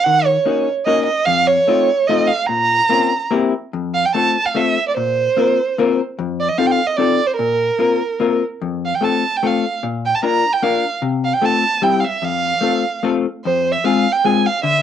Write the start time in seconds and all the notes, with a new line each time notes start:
0.04 D#3 F#5
0.25 C#5
0.46 A#3 C#4 D#4 F#4
0.86 A#3 C#4 D#4 F#4 D#5
1.05 D#5
1.25 F2 F5
1.47 C#5
1.67 A3 C4 D#4 F4
2.07 A3 C4 D#4 F4 D#5
2.27 F5
2.46 A#2 A#5
2.89 A#3 C4 C#4 F4
3.30 A#3 C4 E4 G4
3.73 F2
3.94 F5
4.05 G5
4.14 A3 C4 F4 A4 A5
4.46 F5
4.54 A3 C4 F4 A4 E5
4.88 D5
4.97 A#2 C5
5.37 A#3 C4 F4 A#4
5.78 A#3 C4 F4 A#4
6.19 F2
6.40 D5
6.49 D#5
6.58 C4 D#4 F4 A4 F5
6.67 G5
6.71 F5
6.87 D#5
6.97 C4 D#4 F4 A4 D5
7.27 C5
7.37 A#2 A#4
7.79 A#3 C4 F4 A#4
8.20 A#3 C4 F4 A#4
8.62 F2
8.85 F5
8.95 G5
9.01 A3 C4 F4 A4 A5
9.36 G5
9.43 A3 C4 F4 A4 F5
9.83 A#2
10.05 G5
10.15 A5
10.23 A#3 D4 F4 A#4 A#5
10.53 G5
10.62 A#3 D4 F4 A#4 F5
11.02 C3
11.24 F5
11.33 G5
11.41 A3 C4 F4 A4 A5
11.82 G3 C4 E4 G4 G5
12.00 F5
12.05 E5
12.22 F2 F5
12.61 A3 C4 F4 A4
13.03 A3 C4 F4 A4
13.45 F2 C5
13.72 E5
13.84 G#3 C4 F4 G#4 F5
14.12 G5
14.25 G#3 C4 F4 G#4 G#5
14.46 F5
14.63 D3 E5